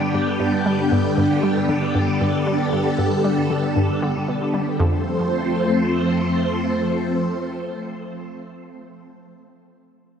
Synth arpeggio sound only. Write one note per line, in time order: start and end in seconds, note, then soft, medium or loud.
0.14 0.25 G2 medium
0.40 0.51 G2 medium
0.66 0.90 G3 medium
0.92 1.10 G2 medium
1.17 1.29 G2 medium
1.43 1.68 G3 medium
1.69 1.88 D3 medium
1.95 2.06 G2 medium
2.21 2.32 G2 medium
2.47 2.71 G3 medium
2.73 2.91 G2 medium
2.98 3.10 G2 medium
3.24 3.49 G3 medium
3.50 3.69 D3 medium
3.76 3.87 G2 medium
4.02 4.21 D3 medium
4.28 4.39 B2 medium
4.54 4.72 G3 medium
4.80 5.04 F2 medium